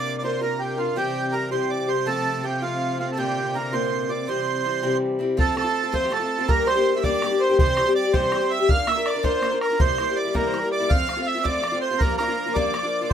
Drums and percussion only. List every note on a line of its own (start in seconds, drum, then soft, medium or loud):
5.39 bodhran medium
5.57 bodhran medium
5.94 bodhran medium
6.12 bodhran soft
6.49 bodhran medium
6.68 bodhran medium
7.04 bodhran medium
7.22 bodhran medium
7.59 bodhran loud
7.77 bodhran medium
8.14 bodhran medium
8.32 bodhran medium
8.69 bodhran medium
8.87 bodhran medium
9.06 bodhran medium
9.24 bodhran medium
9.43 bodhran medium
9.61 bodhran medium
9.80 bodhran medium
9.98 bodhran medium
10.35 bodhran medium
10.54 bodhran medium
10.91 bodhran medium
11.09 bodhran medium
11.45 bodhran medium
11.64 bodhran medium
12.01 bodhran medium
12.19 bodhran medium
12.56 bodhran medium
12.74 bodhran medium